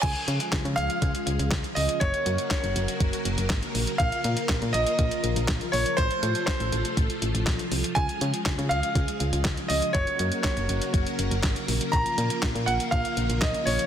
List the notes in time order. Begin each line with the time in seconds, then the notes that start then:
0.02 C#2 C#3 F3 G#3 F4 G#4 G#5, kick, closed hi-hat, crash
0.16 closed hi-hat
0.28 C#3, closed hi-hat
0.40 closed hi-hat
0.52 C#2, kick, snare, clap, closed hi-hat
0.65 C#3, closed hi-hat
0.76 C#2 F5, closed hi-hat
0.90 closed hi-hat
1.02 C#2, kick, closed hi-hat
1.15 closed hi-hat
1.27 C#2, closed hi-hat
1.39 C#2, closed hi-hat
1.51 C#2, kick, snare, clap, closed hi-hat
1.64 closed hi-hat
1.75 C#2 D#5, open hi-hat
1.89 closed hi-hat
2.00 F#1 F#3 A#3 F#4 A#4 C#5, kick, closed hi-hat
2.14 closed hi-hat
2.26 F#2, closed hi-hat
2.38 closed hi-hat
2.50 C#5, kick, snare, clap, closed hi-hat
2.64 F#1, closed hi-hat
2.76 F#1, closed hi-hat
2.88 closed hi-hat
3.00 F#1, kick, closed hi-hat
3.13 closed hi-hat
3.25 F#1, closed hi-hat
3.38 F#1, closed hi-hat
3.50 G#1, kick, snare, clap, closed hi-hat
3.63 closed hi-hat
3.75 A#1, open hi-hat
3.87 closed hi-hat
3.98 A#1 F3 F4 F5, kick, closed hi-hat
4.12 closed hi-hat
4.24 A#2, closed hi-hat
4.37 closed hi-hat
4.49 A#1, kick, snare, clap, closed hi-hat
4.62 A#2, closed hi-hat
4.73 A#1 D#5, closed hi-hat
4.87 closed hi-hat
4.99 A#1, kick, closed hi-hat
5.11 closed hi-hat
5.24 A#1, closed hi-hat
5.36 A#1, closed hi-hat
5.48 A#1, kick, snare, clap, closed hi-hat
5.61 closed hi-hat
5.72 A#1 C#5, open hi-hat
5.86 closed hi-hat
5.97 A1 C3 A3 F4 A4 C5, kick, closed hi-hat
6.11 closed hi-hat
6.23 A2, closed hi-hat
6.35 closed hi-hat
6.46 C5, kick, snare, clap, closed hi-hat
6.60 A1, closed hi-hat
6.72 A1, closed hi-hat
6.85 closed hi-hat
6.97 A1, kick, closed hi-hat
7.10 closed hi-hat
7.22 A1, closed hi-hat
7.34 A1, closed hi-hat
7.47 A#1, kick, snare, clap, closed hi-hat
7.59 closed hi-hat
7.72 C2, open hi-hat
7.84 closed hi-hat
7.95 C#2 C#3 G#3 G#4 G#5, kick, closed hi-hat
8.09 closed hi-hat
8.21 C#3, closed hi-hat
8.34 closed hi-hat
8.46 C#2, kick, snare, clap, closed hi-hat
8.58 C#3, closed hi-hat
8.69 C#2 F5, closed hi-hat
8.83 closed hi-hat
8.95 C#2, kick, closed hi-hat
9.08 closed hi-hat
9.20 C#2, closed hi-hat
9.33 C#2, closed hi-hat
9.45 C#2, kick, snare, clap, closed hi-hat
9.57 closed hi-hat
9.68 C#2 D#5, open hi-hat
9.82 closed hi-hat
9.93 F#1 F#3 A#3 F#4 A#4 C#5, kick, closed hi-hat
10.07 closed hi-hat
10.19 F#2, closed hi-hat
10.32 closed hi-hat
10.42 C#5, kick, snare, clap, closed hi-hat
10.57 F#1, closed hi-hat
10.69 F#1, closed hi-hat
10.82 closed hi-hat
10.94 F#1, kick, closed hi-hat
11.07 closed hi-hat
11.19 F#1, closed hi-hat
11.31 F#1, closed hi-hat
11.43 G#1, kick, snare, clap, closed hi-hat
11.56 closed hi-hat
11.68 A#1, open hi-hat
11.81 closed hi-hat
11.92 A#1 F3 F4 A#5, kick, closed hi-hat
12.06 closed hi-hat
12.18 A#2, closed hi-hat
12.30 closed hi-hat
12.43 A#1, kick, snare, clap, closed hi-hat
12.55 A#2, closed hi-hat
12.66 A#1 F#5, closed hi-hat
12.80 closed hi-hat
12.91 A#1 F5, kick, closed hi-hat
13.05 closed hi-hat
13.17 A#1, closed hi-hat
13.30 A#1, closed hi-hat
13.41 A#1 D#5, kick, snare, clap, closed hi-hat
13.54 closed hi-hat
13.65 A#1 C#5, open hi-hat
13.79 closed hi-hat